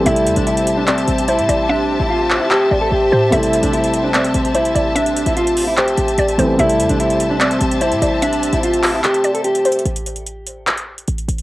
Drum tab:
HH |x--x--x--x--x--x--x-----x--x--x--x--x--x--x-----|------------------------------------------------|x--x--x--x--x--x--x-----x--x--x--x--x--x--x-----|x--x--x--x--x--x--o-----x--x--x--x--x--x--x-----|
CP |------------------------x-----------------------|------------------x-----x-----------------------|------------------------x-----------------------|------------------------x-----------------------|

HH |x--x--x--x--x--x--x-----x--x--x--x--x--x--x-----|x--x--x--x--x--x--o-----x--x--x--x--x--x--x-x-x-|x--x--x--x--x-----x-----x--x-----x--x--x--x--x--|
CP |------------------------x-----------------------|------------------x-----x-----------------------|------------------------x-----------------------|